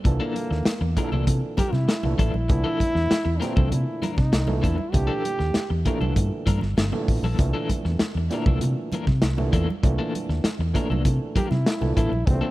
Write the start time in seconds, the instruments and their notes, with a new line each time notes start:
0.04 fingered electric bass C2, clav A#2 D3 E3 A4, trombone A#3, muted clean electric guitar stroke, kick, closed hi-hat
0.20 clean electric guitar E3 A#3 D4 A4
0.35 muted clean electric guitar stroke, closed hi-hat, high conga
0.51 fingered electric bass D#2, muted clean electric guitar stroke, snare
0.65 muted fingered electric bass stroke, muted clean electric guitar stroke, snare, closed hi-hat
0.81 fingered electric bass E2, muted clean electric guitar stroke
0.96 clav A#2 D3 E3 G#3, clean electric guitar E3 A#3 D4 A#4, kick, closed hi-hat
1.04 clav A4
1.12 fingered electric bass C2, clean electric guitar E3 A#3 D4 A4, high conga
1.27 fingered electric bass C3, muted clean electric guitar stroke, kick, closed hi-hat, muted conga, low conga
1.57 clean electric guitar E3 A#3 D4 A#4, trombone G4, muted fingered electric bass stroke, kick, closed hi-hat, muted conga, high conga
1.73 fingered electric bass C3, trombone E4, muted clean electric guitar stroke, snare, high conga
1.88 muted clean electric guitar stroke, snare, closed hi-hat, muted conga
2.03 fingered electric bass C2, clav A#2 D3 E3 A3, muted clean electric guitar stroke, high conga, low conga
2.18 fingered electric bass A1, clean electric guitar E3 A#3 D4 A4, trombone E4, kick, closed hi-hat, muted conga
2.33 fingered electric bass A#1, muted clean electric guitar stroke, high conga
2.49 fingered electric bass C2, clav A#2 D3 E3 A3, muted clean electric guitar stroke, kick, closed hi-hat
2.64 clean electric guitar E3 A#3 D4 A4
2.79 muted clean electric guitar stroke, kick, closed hi-hat, muted conga, high conga
2.95 fingered electric bass E2, muted clean electric guitar stroke, snare
3.10 muted clean electric guitar stroke, muted fingered electric bass stroke, snare, closed hi-hat, muted conga
3.25 fingered electric bass E2, muted clean electric guitar stroke
3.40 clav A#2 D3 E3 G3, clean electric guitar E3 A#3 D4 A#4, trombone C4, snare, closed hi-hat, muted conga
3.49 clav A3
3.56 fingered electric bass C2, clean electric guitar E3 A#3 D4 A4, kick, high conga
3.70 fingered electric bass C3, trombone E4, muted clean electric guitar stroke, closed hi-hat, muted conga, low conga
4.02 clean electric guitar E3 A#3 D4 A#4, muted fingered electric bass stroke, closed hi-hat, high conga
4.15 fingered electric bass C3, trombone D#4, muted clean electric guitar stroke, kick, snare, high conga
4.32 fingered electric bass C2, muted clean electric guitar stroke, snare, closed hi-hat
4.47 clav A#2 D3 E3 A3, muted clean electric guitar stroke, high conga, low conga
4.61 fingered electric bass E2, clean electric guitar E3 A#3 D4 A4, trombone E4, kick, closed hi-hat
4.77 muted clean electric guitar stroke, high conga
4.92 fingered electric bass C2, clav A#2 D3 E3 A3, trombone G4, muted clean electric guitar stroke, kick, closed hi-hat, muted conga
5.07 clean electric guitar E3 A#3 D4 A4
5.23 muted clean electric guitar stroke, closed hi-hat, high conga
5.39 fingered electric bass D#2, muted clean electric guitar stroke, snare
5.54 muted clean electric guitar stroke, muted fingered electric bass stroke, snare, closed hi-hat
5.70 fingered electric bass E2, muted clean electric guitar stroke
5.85 clav A#2 D3 E3 A3, clean electric guitar E3 A#3 D4 A#4, kick, closed hi-hat
6.00 fingered electric bass C2, clean electric guitar E3 A#3 D4 A4, high conga
6.16 fingered electric bass G2, muted clean electric guitar stroke, kick, closed hi-hat, muted conga, low conga
6.46 fingered electric bass G2, clean electric guitar E3 A#3 D4 A#4, kick, closed hi-hat, muted conga, high conga
6.61 fingered electric bass G1, muted clean electric guitar stroke, snare, high conga
6.77 fingered electric bass G1, muted clean electric guitar stroke, snare, closed hi-hat, muted conga
6.92 clav A#2 D3 E3 A3, muted clean electric guitar stroke, high conga, low conga
7.08 fingered electric bass A1, kick, open hi-hat, muted conga
7.23 fingered electric bass A#1, clean electric guitar E3 A#3 D4 A4, high conga
7.38 fingered electric bass C2, clav A#2 D3 E3 A3, muted clean electric guitar stroke, kick, closed hi-hat, muted conga
7.54 clean electric guitar E3 A#3 D4 A4
7.69 muted clean electric guitar stroke, kick, closed hi-hat, muted conga, high conga
7.85 fingered electric bass E2, muted clean electric guitar stroke, snare
7.99 muted fingered electric bass stroke, muted clean electric guitar stroke, snare, closed hi-hat
8.15 fingered electric bass E2, muted clean electric guitar stroke
8.30 clav A#2 D3 E3 G3, clean electric guitar E3 A#3 D4, snare, closed hi-hat
8.34 clav A3, clean electric guitar A#4
8.46 fingered electric bass C2, clean electric guitar E3 A#3 D4 A4, kick, high conga
8.61 fingered electric bass C3, muted clean electric guitar stroke, closed hi-hat, low conga
8.92 clean electric guitar E3 A#3 D4 A#4, muted fingered electric bass stroke, closed hi-hat, muted conga, high conga
9.07 fingered electric bass C3, muted clean electric guitar stroke, kick, snare, high conga
9.22 fingered electric bass C2, muted clean electric guitar stroke, snare, closed hi-hat
9.37 clav A#2 D3 E3 A3, muted clean electric guitar stroke, high conga, low conga
9.53 fingered electric bass E2, clean electric guitar E3 A#3 D4 A4, kick, closed hi-hat, muted conga
9.68 muted clean electric guitar stroke, high conga
9.83 fingered electric bass C2, clav A#2 D3 E3 A3, muted clean electric guitar stroke, kick, closed hi-hat, muted conga
9.99 clean electric guitar E3 A#3 D4 A4
10.14 muted clean electric guitar stroke, closed hi-hat, muted conga, high conga
10.29 fingered electric bass D#2, muted clean electric guitar stroke, snare
10.44 muted fingered electric bass stroke, muted clean electric guitar stroke, snare, closed hi-hat, muted conga
10.59 fingered electric bass E2, muted clean electric guitar stroke
10.74 clav A#2 D3 E3 A3, clean electric guitar E3 A#3 D4 A#4, kick, closed hi-hat
10.90 fingered electric bass C2, clean electric guitar E3 A#3 D4 A4, high conga
11.05 fingered electric bass C3, muted clean electric guitar stroke, kick, closed hi-hat, muted conga, low conga
11.36 clean electric guitar E3 A#3 D4 A#4, trombone G4, muted fingered electric bass stroke, kick, closed hi-hat, muted conga, high conga
11.50 fingered electric bass C3, trombone E4, muted clean electric guitar stroke, snare, high conga
11.66 muted clean electric guitar stroke, snare, closed hi-hat
11.81 fingered electric bass C2, clav A#2 D3 E3 A3, muted clean electric guitar stroke, high conga, low conga
11.95 fingered electric bass A1, clean electric guitar E3 A#3 D4 A4, trombone E4, kick, closed hi-hat
12.12 fingered electric bass A#1, muted clean electric guitar stroke, high conga
12.26 fingered electric bass C2, clav A#2 D3 E3 G#3, trombone C4, muted clean electric guitar stroke, kick, closed hi-hat
12.34 clav A3
12.41 clean electric guitar E3 A#3 D4 A4